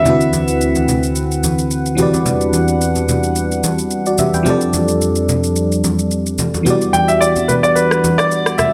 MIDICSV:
0, 0, Header, 1, 5, 480
1, 0, Start_track
1, 0, Tempo, 550459
1, 50, Time_signature, 4, 2, 24, 8
1, 7615, End_track
2, 0, Start_track
2, 0, Title_t, "Grand piano"
2, 0, Program_c, 0, 0
2, 0, Note_on_c, 0, 76, 98
2, 623, Note_off_c, 0, 76, 0
2, 6044, Note_on_c, 0, 79, 91
2, 6175, Note_on_c, 0, 76, 88
2, 6183, Note_off_c, 0, 79, 0
2, 6283, Note_on_c, 0, 74, 88
2, 6290, Note_off_c, 0, 76, 0
2, 6509, Note_off_c, 0, 74, 0
2, 6524, Note_on_c, 0, 71, 79
2, 6568, Note_off_c, 0, 71, 0
2, 6654, Note_on_c, 0, 74, 93
2, 6763, Note_on_c, 0, 71, 85
2, 6769, Note_off_c, 0, 74, 0
2, 7134, Note_on_c, 0, 74, 106
2, 7149, Note_off_c, 0, 71, 0
2, 7481, Note_on_c, 0, 76, 87
2, 7496, Note_off_c, 0, 74, 0
2, 7615, Note_off_c, 0, 76, 0
2, 7615, End_track
3, 0, Start_track
3, 0, Title_t, "FM electric piano"
3, 0, Program_c, 1, 5
3, 0, Control_c, 1, 64, 127
3, 23, Note_on_c, 1, 50, 62
3, 38, Note_on_c, 1, 60, 58
3, 54, Note_on_c, 1, 64, 59
3, 62, Control_c, 1, 64, 0
3, 70, Note_on_c, 1, 66, 57
3, 86, Note_on_c, 1, 71, 69
3, 192, Control_c, 1, 64, 127
3, 1682, Note_off_c, 1, 50, 0
3, 1690, Note_off_c, 1, 60, 0
3, 1698, Note_off_c, 1, 64, 0
3, 1703, Note_on_c, 1, 52, 70
3, 1706, Note_off_c, 1, 66, 0
3, 1714, Note_off_c, 1, 71, 0
3, 1715, Note_on_c, 1, 60, 68
3, 1728, Note_on_c, 1, 66, 65
3, 1740, Note_on_c, 1, 67, 66
3, 1742, Control_c, 1, 64, 0
3, 1753, Note_on_c, 1, 71, 69
3, 1765, Note_on_c, 1, 74, 82
3, 1902, Control_c, 1, 64, 127
3, 3140, Note_off_c, 1, 66, 0
3, 3146, Note_off_c, 1, 67, 0
3, 3153, Note_off_c, 1, 71, 0
3, 3159, Note_off_c, 1, 74, 0
3, 3546, Note_on_c, 1, 74, 61
3, 3552, Note_on_c, 1, 66, 53
3, 3601, Note_off_c, 1, 52, 0
3, 3607, Note_off_c, 1, 60, 0
3, 3647, Note_off_c, 1, 74, 0
3, 3649, Note_off_c, 1, 66, 0
3, 3653, Note_on_c, 1, 76, 68
3, 3659, Note_on_c, 1, 67, 57
3, 3777, Note_off_c, 1, 76, 0
3, 3780, Note_off_c, 1, 67, 0
3, 3786, Note_on_c, 1, 79, 64
3, 3791, Note_on_c, 1, 71, 54
3, 3862, Note_on_c, 1, 53, 77
3, 3878, Note_on_c, 1, 60, 69
3, 3894, Note_on_c, 1, 67, 71
3, 3901, Control_c, 1, 64, 0
3, 3909, Note_on_c, 1, 69, 69
3, 3925, Note_on_c, 1, 74, 86
3, 4012, Note_off_c, 1, 79, 0
3, 4014, Note_off_c, 1, 71, 0
3, 4042, Control_c, 1, 64, 127
3, 5761, Note_off_c, 1, 53, 0
3, 5769, Note_off_c, 1, 60, 0
3, 5777, Note_off_c, 1, 67, 0
3, 5783, Note_on_c, 1, 52, 71
3, 5784, Note_off_c, 1, 69, 0
3, 5792, Note_off_c, 1, 74, 0
3, 5798, Note_on_c, 1, 59, 69
3, 5814, Note_on_c, 1, 66, 71
3, 5821, Control_c, 1, 64, 0
3, 5829, Note_on_c, 1, 67, 68
3, 5846, Note_on_c, 1, 74, 81
3, 5978, Control_c, 1, 64, 127
3, 7615, Note_off_c, 1, 52, 0
3, 7615, Note_off_c, 1, 59, 0
3, 7615, Note_off_c, 1, 66, 0
3, 7615, Note_off_c, 1, 67, 0
3, 7615, Note_off_c, 1, 74, 0
3, 7615, End_track
4, 0, Start_track
4, 0, Title_t, "Analog synth pad"
4, 0, Program_c, 2, 89
4, 0, Note_on_c, 2, 52, 70
4, 0, Note_on_c, 2, 78, 72
4, 51, Note_on_c, 2, 38, 76
4, 51, Note_on_c, 2, 50, 69
4, 51, Note_on_c, 2, 60, 73
4, 51, Note_on_c, 2, 71, 83
4, 1694, Note_off_c, 2, 52, 0
4, 1694, Note_off_c, 2, 78, 0
4, 1713, Note_off_c, 2, 50, 0
4, 1713, Note_off_c, 2, 60, 0
4, 1714, Note_off_c, 2, 38, 0
4, 1728, Note_on_c, 2, 55, 73
4, 1729, Note_on_c, 2, 40, 80
4, 1729, Note_on_c, 2, 52, 75
4, 1729, Note_on_c, 2, 62, 74
4, 1729, Note_on_c, 2, 78, 73
4, 3855, Note_off_c, 2, 71, 0
4, 3867, Note_off_c, 2, 40, 0
4, 3867, Note_off_c, 2, 52, 0
4, 3867, Note_off_c, 2, 78, 0
4, 3890, Note_on_c, 2, 41, 78
4, 3890, Note_on_c, 2, 53, 69
4, 3890, Note_on_c, 2, 69, 87
4, 5790, Note_off_c, 2, 41, 0
4, 5790, Note_off_c, 2, 53, 0
4, 5791, Note_off_c, 2, 69, 0
4, 5810, Note_on_c, 2, 40, 80
4, 5810, Note_on_c, 2, 52, 73
4, 5810, Note_on_c, 2, 78, 91
4, 7615, Note_off_c, 2, 40, 0
4, 7615, Note_off_c, 2, 52, 0
4, 7615, Note_off_c, 2, 55, 0
4, 7615, Note_off_c, 2, 62, 0
4, 7615, Note_off_c, 2, 78, 0
4, 7615, End_track
5, 0, Start_track
5, 0, Title_t, "Drums"
5, 48, Note_on_c, 9, 64, 73
5, 49, Note_on_c, 9, 82, 71
5, 135, Note_off_c, 9, 64, 0
5, 136, Note_off_c, 9, 82, 0
5, 181, Note_on_c, 9, 82, 47
5, 269, Note_off_c, 9, 82, 0
5, 289, Note_on_c, 9, 63, 65
5, 289, Note_on_c, 9, 82, 91
5, 376, Note_off_c, 9, 63, 0
5, 376, Note_off_c, 9, 82, 0
5, 418, Note_on_c, 9, 82, 57
5, 505, Note_off_c, 9, 82, 0
5, 534, Note_on_c, 9, 82, 77
5, 621, Note_off_c, 9, 82, 0
5, 657, Note_on_c, 9, 82, 56
5, 663, Note_on_c, 9, 63, 52
5, 744, Note_off_c, 9, 82, 0
5, 750, Note_off_c, 9, 63, 0
5, 771, Note_on_c, 9, 82, 85
5, 772, Note_on_c, 9, 64, 65
5, 858, Note_off_c, 9, 82, 0
5, 860, Note_off_c, 9, 64, 0
5, 900, Note_on_c, 9, 82, 49
5, 987, Note_off_c, 9, 82, 0
5, 1007, Note_on_c, 9, 82, 73
5, 1094, Note_off_c, 9, 82, 0
5, 1147, Note_on_c, 9, 82, 51
5, 1234, Note_off_c, 9, 82, 0
5, 1252, Note_on_c, 9, 63, 70
5, 1252, Note_on_c, 9, 82, 106
5, 1339, Note_off_c, 9, 63, 0
5, 1339, Note_off_c, 9, 82, 0
5, 1382, Note_on_c, 9, 82, 53
5, 1469, Note_off_c, 9, 82, 0
5, 1489, Note_on_c, 9, 82, 64
5, 1576, Note_off_c, 9, 82, 0
5, 1621, Note_on_c, 9, 82, 51
5, 1709, Note_off_c, 9, 82, 0
5, 1726, Note_on_c, 9, 82, 95
5, 1731, Note_on_c, 9, 63, 61
5, 1731, Note_on_c, 9, 64, 60
5, 1814, Note_off_c, 9, 82, 0
5, 1818, Note_off_c, 9, 63, 0
5, 1818, Note_off_c, 9, 64, 0
5, 1864, Note_on_c, 9, 63, 68
5, 1864, Note_on_c, 9, 82, 53
5, 1951, Note_off_c, 9, 63, 0
5, 1951, Note_off_c, 9, 82, 0
5, 1968, Note_on_c, 9, 64, 73
5, 1970, Note_on_c, 9, 82, 70
5, 2055, Note_off_c, 9, 64, 0
5, 2057, Note_off_c, 9, 82, 0
5, 2102, Note_on_c, 9, 82, 48
5, 2189, Note_off_c, 9, 82, 0
5, 2209, Note_on_c, 9, 63, 66
5, 2209, Note_on_c, 9, 82, 94
5, 2296, Note_off_c, 9, 63, 0
5, 2296, Note_off_c, 9, 82, 0
5, 2338, Note_on_c, 9, 82, 59
5, 2425, Note_off_c, 9, 82, 0
5, 2453, Note_on_c, 9, 82, 78
5, 2540, Note_off_c, 9, 82, 0
5, 2576, Note_on_c, 9, 82, 57
5, 2582, Note_on_c, 9, 63, 50
5, 2663, Note_off_c, 9, 82, 0
5, 2669, Note_off_c, 9, 63, 0
5, 2692, Note_on_c, 9, 64, 67
5, 2692, Note_on_c, 9, 82, 86
5, 2779, Note_off_c, 9, 64, 0
5, 2779, Note_off_c, 9, 82, 0
5, 2819, Note_on_c, 9, 82, 48
5, 2907, Note_off_c, 9, 82, 0
5, 2927, Note_on_c, 9, 82, 79
5, 3014, Note_off_c, 9, 82, 0
5, 3066, Note_on_c, 9, 82, 50
5, 3153, Note_off_c, 9, 82, 0
5, 3171, Note_on_c, 9, 63, 71
5, 3171, Note_on_c, 9, 82, 105
5, 3258, Note_off_c, 9, 63, 0
5, 3258, Note_off_c, 9, 82, 0
5, 3301, Note_on_c, 9, 82, 49
5, 3388, Note_off_c, 9, 82, 0
5, 3407, Note_on_c, 9, 82, 65
5, 3494, Note_off_c, 9, 82, 0
5, 3541, Note_on_c, 9, 82, 52
5, 3628, Note_off_c, 9, 82, 0
5, 3645, Note_on_c, 9, 82, 97
5, 3651, Note_on_c, 9, 63, 60
5, 3651, Note_on_c, 9, 64, 62
5, 3732, Note_off_c, 9, 82, 0
5, 3738, Note_off_c, 9, 63, 0
5, 3738, Note_off_c, 9, 64, 0
5, 3782, Note_on_c, 9, 82, 52
5, 3784, Note_on_c, 9, 63, 62
5, 3870, Note_off_c, 9, 82, 0
5, 3871, Note_off_c, 9, 63, 0
5, 3887, Note_on_c, 9, 64, 73
5, 3889, Note_on_c, 9, 82, 69
5, 3974, Note_off_c, 9, 64, 0
5, 3976, Note_off_c, 9, 82, 0
5, 4020, Note_on_c, 9, 82, 47
5, 4107, Note_off_c, 9, 82, 0
5, 4128, Note_on_c, 9, 82, 96
5, 4129, Note_on_c, 9, 63, 68
5, 4215, Note_off_c, 9, 82, 0
5, 4216, Note_off_c, 9, 63, 0
5, 4258, Note_on_c, 9, 82, 62
5, 4345, Note_off_c, 9, 82, 0
5, 4373, Note_on_c, 9, 82, 78
5, 4460, Note_off_c, 9, 82, 0
5, 4496, Note_on_c, 9, 82, 55
5, 4583, Note_off_c, 9, 82, 0
5, 4611, Note_on_c, 9, 64, 68
5, 4612, Note_on_c, 9, 82, 84
5, 4699, Note_off_c, 9, 64, 0
5, 4699, Note_off_c, 9, 82, 0
5, 4740, Note_on_c, 9, 82, 50
5, 4827, Note_off_c, 9, 82, 0
5, 4848, Note_on_c, 9, 82, 77
5, 4935, Note_off_c, 9, 82, 0
5, 4987, Note_on_c, 9, 82, 49
5, 5074, Note_off_c, 9, 82, 0
5, 5092, Note_on_c, 9, 63, 69
5, 5092, Note_on_c, 9, 82, 99
5, 5179, Note_off_c, 9, 63, 0
5, 5179, Note_off_c, 9, 82, 0
5, 5222, Note_on_c, 9, 82, 55
5, 5309, Note_off_c, 9, 82, 0
5, 5329, Note_on_c, 9, 82, 62
5, 5417, Note_off_c, 9, 82, 0
5, 5462, Note_on_c, 9, 82, 55
5, 5549, Note_off_c, 9, 82, 0
5, 5566, Note_on_c, 9, 82, 99
5, 5571, Note_on_c, 9, 63, 64
5, 5571, Note_on_c, 9, 64, 61
5, 5653, Note_off_c, 9, 82, 0
5, 5659, Note_off_c, 9, 63, 0
5, 5659, Note_off_c, 9, 64, 0
5, 5705, Note_on_c, 9, 63, 67
5, 5705, Note_on_c, 9, 82, 52
5, 5792, Note_off_c, 9, 82, 0
5, 5793, Note_off_c, 9, 63, 0
5, 5808, Note_on_c, 9, 64, 75
5, 5810, Note_on_c, 9, 82, 75
5, 5896, Note_off_c, 9, 64, 0
5, 5897, Note_off_c, 9, 82, 0
5, 5942, Note_on_c, 9, 82, 47
5, 6029, Note_off_c, 9, 82, 0
5, 6049, Note_on_c, 9, 82, 89
5, 6050, Note_on_c, 9, 63, 68
5, 6136, Note_off_c, 9, 82, 0
5, 6137, Note_off_c, 9, 63, 0
5, 6179, Note_on_c, 9, 82, 61
5, 6266, Note_off_c, 9, 82, 0
5, 6293, Note_on_c, 9, 82, 79
5, 6381, Note_off_c, 9, 82, 0
5, 6417, Note_on_c, 9, 82, 56
5, 6422, Note_on_c, 9, 63, 51
5, 6504, Note_off_c, 9, 82, 0
5, 6510, Note_off_c, 9, 63, 0
5, 6532, Note_on_c, 9, 82, 86
5, 6533, Note_on_c, 9, 64, 66
5, 6619, Note_off_c, 9, 82, 0
5, 6620, Note_off_c, 9, 64, 0
5, 6661, Note_on_c, 9, 82, 49
5, 6748, Note_off_c, 9, 82, 0
5, 6769, Note_on_c, 9, 82, 76
5, 6856, Note_off_c, 9, 82, 0
5, 6900, Note_on_c, 9, 37, 81
5, 6908, Note_on_c, 9, 82, 49
5, 6987, Note_off_c, 9, 37, 0
5, 6995, Note_off_c, 9, 82, 0
5, 7013, Note_on_c, 9, 63, 71
5, 7013, Note_on_c, 9, 82, 101
5, 7100, Note_off_c, 9, 63, 0
5, 7100, Note_off_c, 9, 82, 0
5, 7143, Note_on_c, 9, 37, 87
5, 7143, Note_on_c, 9, 82, 50
5, 7230, Note_off_c, 9, 37, 0
5, 7230, Note_off_c, 9, 82, 0
5, 7250, Note_on_c, 9, 82, 65
5, 7337, Note_off_c, 9, 82, 0
5, 7379, Note_on_c, 9, 37, 90
5, 7382, Note_on_c, 9, 82, 52
5, 7466, Note_off_c, 9, 37, 0
5, 7469, Note_off_c, 9, 82, 0
5, 7486, Note_on_c, 9, 82, 97
5, 7490, Note_on_c, 9, 37, 90
5, 7492, Note_on_c, 9, 63, 58
5, 7492, Note_on_c, 9, 64, 61
5, 7573, Note_off_c, 9, 82, 0
5, 7578, Note_off_c, 9, 37, 0
5, 7579, Note_off_c, 9, 63, 0
5, 7579, Note_off_c, 9, 64, 0
5, 7615, End_track
0, 0, End_of_file